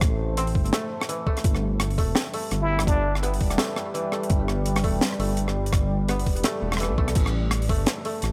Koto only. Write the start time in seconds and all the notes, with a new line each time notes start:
Already playing: E3 A3 C4
0.37 C4
0.73 A3
1.09 E3
1.27 A3
1.98 A3
2.34 A3
3.23 B3
3.59 A3
3.94 E3
4.12 A3
4.84 A3
5.19 A3
6.09 B3
6.44 A3
6.80 E3
6.98 A3
7.69 A3
8.05 A3